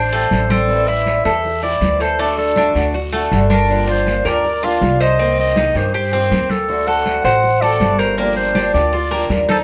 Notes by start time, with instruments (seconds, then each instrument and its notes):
Already playing: upright bass A1, cuban tres D4, clarinet C5
0.12 steel-string acoustic guitar G3 C4 G4, cuban tres A3, high conga
0.31 upright bass A1, steel-string acoustic guitar D3 G3 C4 G4, high conga, short guiro
0.50 cuban tres C4, clarinet A4, high conga, short guiro
0.69 steel-string acoustic guitar E3 G3 C4 E4, high conga, long guiro
0.88 cuban tres E4, clarinet E5, high conga
1.06 steel-string acoustic guitar E3 G3 C4 E4, high conga, short guiro
1.25 upright bass E2, steel-string acoustic guitar G3 C4 E4, cuban tres A4, clarinet E5, short guiro
1.44 muted steel-string acoustic guitar stroke, high conga, long guiro
1.63 steel-string acoustic guitar G3 C4 E4, cuban tres E4, clarinet D5, high conga
1.81 upright bass D2, steel-string acoustic guitar E3 G3 C4 E4, high conga, short guiro
2.00 cuban tres A4, clarinet C5, short guiro
2.19 steel-string acoustic guitar D3 A3 D4 F#4, cuban tres A3, clarinet D5, high conga, long guiro
2.38 clarinet A4, high conga
2.56 steel-string acoustic guitar D3 A3 D4 F#4, cuban tres D4, high conga, short guiro
2.75 upright bass D2, steel-string acoustic guitar A3 D4 F#4, high conga, short guiro
2.94 cuban tres F#4, muted steel-string acoustic guitar stroke, high conga, long guiro
3.13 cuban tres A3, steel-string acoustic guitar A3 D4 F#4, high conga
3.32 upright bass G1, steel-string acoustic guitar D3 A3 D4 F#4, high conga, short guiro
3.50 cuban tres D4, clarinet A#4, high conga, short guiro
3.69 steel-string acoustic guitar D3 F3 A#3 D4 G4, high conga, long guiro
3.87 cuban tres F4, clarinet C5, high conga
4.07 steel-string acoustic guitar F3 A#3 D4 G4, high conga, short guiro
4.25 upright bass D2, steel-string acoustic guitar F3 A#3 D4 G4, cuban tres A#4, clarinet D5, short guiro
4.44 muted steel-string acoustic guitar stroke, high conga, long guiro
4.63 steel-string acoustic guitar F3 A#3 D4 G4, cuban tres F4, clarinet F5, high conga
4.81 upright bass C2, steel-string acoustic guitar F3 A#3 D4 G4, high conga, short guiro
5.00 cuban tres C5, clarinet D#5, short guiro
5.18 steel-string acoustic guitar C3 D#3 A#3 C4 G4, cuban tres C4, high conga, long guiro
5.38 clarinet D#5, high conga
5.56 steel-string acoustic guitar D#3 A#3 C4 G4, cuban tres D#4, high conga, short guiro
5.74 upright bass G2, steel-string acoustic guitar D#3 A#3 C4 G4, clarinet C5, high conga, short guiro
5.94 cuban tres G4, clarinet C5, muted steel-string acoustic guitar stroke, high conga, long guiro
6.12 steel-string acoustic guitar D#3 A#3 C4 G4, cuban tres C4, high conga
6.31 upright bass D2, steel-string acoustic guitar A#3 C4 G4, high conga, short guiro
6.50 clarinet A4, high conga, short guiro
6.68 steel-string acoustic guitar D3 A3 C4 F#4, high conga, long guiro
6.87 cuban tres A4, clarinet F#5, high conga
7.05 steel-string acoustic guitar D3 A3 C4 F#4, high conga, short guiro
7.24 upright bass A1, steel-string acoustic guitar A3 C4 F#4, cuban tres C5, clarinet F#5, short guiro
7.43 muted steel-string acoustic guitar stroke, high conga, long guiro
7.61 steel-string acoustic guitar A3 C4 F#4, cuban tres A4, clarinet D5, high conga
7.80 upright bass G1, steel-string acoustic guitar D3 A3 C4 F#4, high conga, short guiro
7.99 cuban tres A#4, clarinet C5, short guiro
8.18 steel-string acoustic guitar D3 F3 A#3 D4 G4, cuban tres A#3, clarinet A#4, high conga, long guiro
8.36 clarinet C5, high conga
8.55 steel-string acoustic guitar F3 A#3 D4 G4, cuban tres D4, high conga, short guiro
8.74 upright bass D2, steel-string acoustic guitar F3 A#3 D4 G4, clarinet D5, high conga, short guiro
8.93 cuban tres F4, muted steel-string acoustic guitar stroke, high conga, long guiro
9.11 steel-string acoustic guitar F3 A#3 D4 G4, cuban tres A#3, high conga
9.29 upright bass D#2, steel-string acoustic guitar F3 A#3 D4 G4, high conga, short guiro
9.49 cuban tres D#4, trumpet A4, clarinet C5, high conga, short guiro